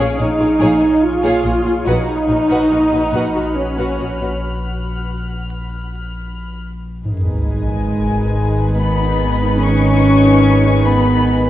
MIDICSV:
0, 0, Header, 1, 11, 480
1, 0, Start_track
1, 0, Tempo, 842697
1, 1065, Time_signature, 3, 2, 24, 8
1, 2033, Tempo, 867052
1, 4433, Tempo, 837989
1, 6492, End_track
2, 0, Start_track
2, 0, Title_t, "Violin section"
2, 0, Program_c, 0, 48
2, 0, Note_on_c, 0, 73, 39
2, 0, Note_on_c, 0, 98, 42
2, 338, Note_off_c, 0, 98, 0
2, 809, Note_off_c, 0, 73, 0
2, 1065, Note_on_c, 0, 83, 42
2, 1554, Note_on_c, 0, 89, 44
2, 3697, Note_off_c, 0, 83, 0
2, 3701, Note_off_c, 0, 89, 0
2, 6492, End_track
3, 0, Start_track
3, 0, Title_t, "Violin section"
3, 0, Program_c, 1, 48
3, 0, Note_on_c, 1, 77, 67
3, 107, Note_off_c, 1, 77, 0
3, 127, Note_on_c, 1, 73, 55
3, 171, Note_off_c, 1, 73, 0
3, 245, Note_on_c, 1, 68, 53
3, 290, Note_off_c, 1, 68, 0
3, 363, Note_on_c, 1, 77, 65
3, 467, Note_off_c, 1, 77, 0
3, 478, Note_on_c, 1, 73, 50
3, 524, Note_off_c, 1, 73, 0
3, 717, Note_on_c, 1, 77, 70
3, 823, Note_off_c, 1, 77, 0
3, 836, Note_on_c, 1, 73, 56
3, 881, Note_off_c, 1, 73, 0
3, 950, Note_on_c, 1, 68, 49
3, 996, Note_off_c, 1, 68, 0
3, 1065, Note_on_c, 1, 78, 64
3, 1176, Note_off_c, 1, 78, 0
3, 1315, Note_on_c, 1, 71, 43
3, 1360, Note_off_c, 1, 71, 0
3, 1430, Note_on_c, 1, 78, 54
3, 1540, Note_off_c, 1, 78, 0
3, 1552, Note_on_c, 1, 75, 47
3, 1598, Note_off_c, 1, 75, 0
3, 1675, Note_on_c, 1, 71, 44
3, 1721, Note_off_c, 1, 71, 0
3, 1790, Note_on_c, 1, 78, 53
3, 1903, Note_off_c, 1, 78, 0
3, 1919, Note_on_c, 1, 75, 35
3, 1964, Note_off_c, 1, 75, 0
3, 2155, Note_on_c, 1, 78, 47
3, 2264, Note_off_c, 1, 78, 0
3, 2274, Note_on_c, 1, 75, 39
3, 2318, Note_off_c, 1, 75, 0
3, 2393, Note_on_c, 1, 71, 32
3, 2438, Note_off_c, 1, 71, 0
3, 4192, Note_on_c, 1, 80, 65
3, 4890, Note_off_c, 1, 80, 0
3, 4914, Note_on_c, 1, 83, 85
3, 5395, Note_off_c, 1, 83, 0
3, 5398, Note_on_c, 1, 85, 96
3, 6114, Note_on_c, 1, 83, 101
3, 6115, Note_off_c, 1, 85, 0
3, 6492, Note_off_c, 1, 83, 0
3, 6492, End_track
4, 0, Start_track
4, 0, Title_t, "Ambient pad"
4, 0, Program_c, 2, 92
4, 0, Note_on_c, 2, 68, 52
4, 0, Note_on_c, 2, 73, 53
4, 0, Note_on_c, 2, 77, 54
4, 1068, Note_off_c, 2, 68, 0
4, 1069, Note_off_c, 2, 77, 0
4, 1070, Note_off_c, 2, 73, 0
4, 1072, Note_on_c, 2, 71, 50
4, 1073, Note_on_c, 2, 66, 55
4, 1074, Note_on_c, 2, 78, 58
4, 2514, Note_off_c, 2, 71, 0
4, 2515, Note_off_c, 2, 66, 0
4, 2515, Note_off_c, 2, 78, 0
4, 3957, Note_on_c, 2, 71, 54
4, 3958, Note_on_c, 2, 80, 57
4, 3959, Note_on_c, 2, 63, 60
4, 6492, Note_off_c, 2, 63, 0
4, 6492, Note_off_c, 2, 71, 0
4, 6492, Note_off_c, 2, 80, 0
4, 6492, End_track
5, 0, Start_track
5, 0, Title_t, "Violin section"
5, 0, Program_c, 3, 48
5, 0, Note_on_c, 3, 68, 72
5, 0, Note_on_c, 3, 73, 70
5, 101, Note_off_c, 3, 68, 0
5, 103, Note_off_c, 3, 73, 0
5, 108, Note_on_c, 3, 68, 48
5, 111, Note_off_c, 3, 68, 0
5, 111, Note_on_c, 3, 68, 44
5, 156, Note_off_c, 3, 68, 0
5, 224, Note_on_c, 3, 65, 46
5, 226, Note_on_c, 3, 68, 55
5, 270, Note_off_c, 3, 65, 0
5, 272, Note_off_c, 3, 68, 0
5, 341, Note_on_c, 3, 73, 60
5, 344, Note_on_c, 3, 68, 71
5, 453, Note_off_c, 3, 68, 0
5, 456, Note_off_c, 3, 73, 0
5, 460, Note_on_c, 3, 68, 54
5, 462, Note_off_c, 3, 68, 0
5, 462, Note_on_c, 3, 68, 50
5, 507, Note_off_c, 3, 68, 0
5, 700, Note_on_c, 3, 68, 68
5, 703, Note_on_c, 3, 73, 62
5, 811, Note_off_c, 3, 68, 0
5, 815, Note_off_c, 3, 73, 0
5, 818, Note_on_c, 3, 68, 57
5, 864, Note_off_c, 3, 68, 0
5, 940, Note_on_c, 3, 65, 49
5, 942, Note_on_c, 3, 68, 49
5, 986, Note_off_c, 3, 65, 0
5, 988, Note_off_c, 3, 68, 0
5, 1058, Note_on_c, 3, 66, 66
5, 1059, Note_on_c, 3, 71, 61
5, 1173, Note_off_c, 3, 66, 0
5, 1173, Note_off_c, 3, 71, 0
5, 1302, Note_on_c, 3, 63, 42
5, 1302, Note_on_c, 3, 66, 45
5, 1348, Note_off_c, 3, 63, 0
5, 1348, Note_off_c, 3, 66, 0
5, 1423, Note_on_c, 3, 66, 65
5, 1423, Note_on_c, 3, 71, 61
5, 1535, Note_off_c, 3, 66, 0
5, 1536, Note_off_c, 3, 71, 0
5, 1541, Note_on_c, 3, 66, 44
5, 1543, Note_off_c, 3, 66, 0
5, 1543, Note_on_c, 3, 66, 44
5, 1589, Note_off_c, 3, 66, 0
5, 1661, Note_on_c, 3, 63, 39
5, 1662, Note_on_c, 3, 66, 40
5, 1707, Note_off_c, 3, 63, 0
5, 1708, Note_off_c, 3, 66, 0
5, 1787, Note_on_c, 3, 71, 56
5, 1788, Note_on_c, 3, 66, 53
5, 1901, Note_off_c, 3, 66, 0
5, 1901, Note_off_c, 3, 71, 0
5, 1912, Note_on_c, 3, 66, 44
5, 1958, Note_off_c, 3, 66, 0
5, 2152, Note_on_c, 3, 66, 48
5, 2153, Note_on_c, 3, 71, 50
5, 2262, Note_off_c, 3, 66, 0
5, 2263, Note_off_c, 3, 71, 0
5, 2269, Note_on_c, 3, 66, 35
5, 2273, Note_off_c, 3, 66, 0
5, 2273, Note_on_c, 3, 66, 36
5, 2318, Note_off_c, 3, 66, 0
5, 2391, Note_on_c, 3, 63, 37
5, 2391, Note_on_c, 3, 66, 36
5, 2435, Note_off_c, 3, 63, 0
5, 2436, Note_off_c, 3, 66, 0
5, 3960, Note_on_c, 3, 68, 52
5, 3961, Note_on_c, 3, 71, 53
5, 6492, Note_off_c, 3, 68, 0
5, 6492, Note_off_c, 3, 71, 0
5, 6492, End_track
6, 0, Start_track
6, 0, Title_t, "Viola section"
6, 0, Program_c, 4, 48
6, 0, Note_on_c, 4, 61, 74
6, 94, Note_off_c, 4, 61, 0
6, 112, Note_on_c, 4, 63, 77
6, 586, Note_on_c, 4, 65, 85
6, 587, Note_off_c, 4, 63, 0
6, 1064, Note_off_c, 4, 65, 0
6, 1065, Note_on_c, 4, 63, 84
6, 2032, Note_off_c, 4, 63, 0
6, 2032, Note_on_c, 4, 61, 64
6, 2511, Note_off_c, 4, 61, 0
6, 3956, Note_on_c, 4, 51, 53
6, 3960, Note_on_c, 4, 63, 50
6, 6492, Note_off_c, 4, 51, 0
6, 6492, Note_off_c, 4, 63, 0
6, 6492, End_track
7, 0, Start_track
7, 0, Title_t, "French horn section"
7, 0, Program_c, 5, 60
7, 4200, Note_on_c, 5, 56, 55
7, 4894, Note_off_c, 5, 56, 0
7, 4912, Note_on_c, 5, 59, 62
7, 5388, Note_on_c, 5, 61, 92
7, 5394, Note_off_c, 5, 59, 0
7, 6095, Note_off_c, 5, 61, 0
7, 6108, Note_on_c, 5, 59, 74
7, 6492, Note_off_c, 5, 59, 0
7, 6492, End_track
8, 0, Start_track
8, 0, Title_t, "Cello section"
8, 0, Program_c, 6, 48
8, 110, Note_on_c, 6, 46, 51
8, 155, Note_off_c, 6, 46, 0
8, 226, Note_on_c, 6, 46, 47
8, 272, Note_off_c, 6, 46, 0
8, 345, Note_on_c, 6, 46, 77
8, 391, Note_off_c, 6, 46, 0
8, 469, Note_on_c, 6, 46, 48
8, 515, Note_off_c, 6, 46, 0
8, 705, Note_on_c, 6, 46, 69
8, 751, Note_off_c, 6, 46, 0
8, 819, Note_on_c, 6, 46, 49
8, 865, Note_off_c, 6, 46, 0
8, 938, Note_on_c, 6, 46, 50
8, 984, Note_off_c, 6, 46, 0
8, 1056, Note_on_c, 6, 46, 67
8, 1102, Note_off_c, 6, 46, 0
8, 1299, Note_on_c, 6, 46, 50
8, 1345, Note_off_c, 6, 46, 0
8, 1418, Note_on_c, 6, 46, 59
8, 1463, Note_off_c, 6, 46, 0
8, 1541, Note_on_c, 6, 46, 41
8, 1587, Note_off_c, 6, 46, 0
8, 1661, Note_on_c, 6, 46, 43
8, 1707, Note_off_c, 6, 46, 0
8, 1782, Note_on_c, 6, 46, 61
8, 1828, Note_off_c, 6, 46, 0
8, 1909, Note_on_c, 6, 46, 39
8, 1955, Note_off_c, 6, 46, 0
8, 2148, Note_on_c, 6, 46, 52
8, 2192, Note_off_c, 6, 46, 0
8, 2266, Note_on_c, 6, 46, 38
8, 2311, Note_off_c, 6, 46, 0
8, 2389, Note_on_c, 6, 46, 33
8, 2433, Note_off_c, 6, 46, 0
8, 4192, Note_on_c, 6, 56, 60
8, 4890, Note_off_c, 6, 56, 0
8, 4914, Note_on_c, 6, 59, 71
8, 5394, Note_on_c, 6, 61, 78
8, 5395, Note_off_c, 6, 59, 0
8, 6113, Note_off_c, 6, 61, 0
8, 6113, Note_on_c, 6, 59, 77
8, 6492, Note_off_c, 6, 59, 0
8, 6492, End_track
9, 0, Start_track
9, 0, Title_t, "Double bass section"
9, 0, Program_c, 7, 48
9, 109, Note_on_c, 7, 34, 47
9, 155, Note_off_c, 7, 34, 0
9, 347, Note_on_c, 7, 34, 68
9, 392, Note_off_c, 7, 34, 0
9, 827, Note_on_c, 7, 34, 54
9, 873, Note_off_c, 7, 34, 0
9, 1067, Note_on_c, 7, 34, 73
9, 1112, Note_off_c, 7, 34, 0
9, 1302, Note_on_c, 7, 34, 47
9, 1347, Note_off_c, 7, 34, 0
9, 1545, Note_on_c, 7, 34, 40
9, 1590, Note_off_c, 7, 34, 0
9, 1788, Note_on_c, 7, 34, 58
9, 1833, Note_off_c, 7, 34, 0
9, 2271, Note_on_c, 7, 34, 35
9, 2316, Note_off_c, 7, 34, 0
9, 3960, Note_on_c, 7, 32, 54
9, 6492, Note_off_c, 7, 32, 0
9, 6492, End_track
10, 0, Start_track
10, 0, Title_t, "Synth drone"
10, 0, Program_c, 8, 95
10, 0, Note_on_c, 8, 34, 67
10, 1044, Note_off_c, 8, 34, 0
10, 1058, Note_on_c, 8, 34, 67
10, 3934, Note_off_c, 8, 34, 0
10, 3967, Note_on_c, 8, 32, 73
10, 6492, Note_off_c, 8, 32, 0
10, 6492, End_track
11, 0, Start_track
11, 0, Title_t, "Sub drop"
11, 0, Program_c, 10, 103
11, 3961, Note_on_c, 10, 60, 51
11, 5397, Note_off_c, 10, 60, 0
11, 6492, End_track
0, 0, End_of_file